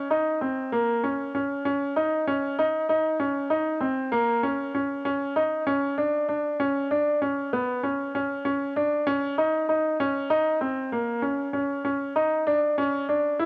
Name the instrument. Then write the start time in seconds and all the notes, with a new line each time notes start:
grand piano
0.11 D#4
0.41 C4
0.72 A#3
1.03 C#4
1.34 C#4
1.65 C#4
1.96 D#4
2.27 C#4
2.59 D#4
2.89 D#4
3.20 C#4
3.50 D#4
3.81 C4
4.12 A#3
4.43 C#4
4.75 C#4
5.05 C#4
5.36 D#4
5.67 C#4
5.98 D4
6.29 D4
6.60 C#4
6.91 D4
7.22 C#4
7.53 B3
7.83 C#4
8.15 C#4
8.45 C#4
8.76 D4
9.07 C#4
9.38 D#4
9.69 D#4
10.00 C#4
10.30 D#4
10.61 C4
10.92 A#3
11.22 C#4
11.53 C#4
11.85 C#4
12.16 D#4
12.47 D4
12.78 C#4
13.09 D4
13.40 E4